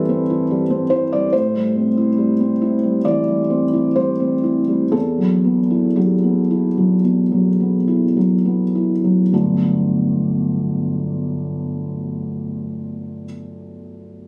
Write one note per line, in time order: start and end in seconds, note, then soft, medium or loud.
0.00 1.35 G2 medium
0.00 1.35 E3 soft
0.00 0.51 G3 medium
0.00 0.09 C4 soft
0.00 0.30 E4 medium
0.00 1.35 A4 medium
0.00 0.90 B4 medium
0.09 0.41 C4 medium
0.30 0.62 E4 soft
0.51 0.83 G3 soft
0.70 1.03 C4 medium
0.90 1.24 E4 soft
0.90 1.11 C5 medium
1.12 1.33 G3 medium
1.12 1.33 D5 medium
1.33 3.02 A2 medium
1.33 3.05 C5 loud
1.55 1.88 G3 soft
1.76 2.09 C4 soft
1.97 2.31 E4 soft
2.18 2.52 G3 soft
2.40 2.75 C4 soft
2.62 2.96 E4 soft
2.83 3.18 G3 soft
3.05 3.41 E3 soft
3.05 3.96 D5 medium
3.28 3.64 G3 soft
3.50 3.87 C4 soft
3.73 4.10 E4 soft
3.96 4.34 G3 soft
3.96 4.94 C5 medium
4.20 4.59 C4 soft
4.44 4.84 E4 soft
4.68 4.93 G3 soft
4.92 6.99 E2 soft
4.92 5.96 A4 medium
5.18 5.60 F#3 soft
5.44 5.86 B3 soft
5.70 6.13 E4 soft
5.96 6.39 F#3 soft
5.96 8.15 G4 medium
6.23 6.66 B3 soft
6.51 6.94 E4 soft
6.78 7.21 F#3 soft
7.04 7.48 B2 soft
7.32 7.76 F#3 soft
7.60 8.05 B3 soft
7.88 8.33 E4 soft
8.17 8.63 F#3 soft
8.45 8.92 B3 soft
8.75 9.21 E4 soft
9.04 9.32 F#3 soft
9.33 13.24 G1 soft
9.33 13.24 D2 soft
9.33 13.24 F#3 soft
9.33 13.25 B3 soft
9.33 13.25 D4 soft
9.33 13.25 F#4 soft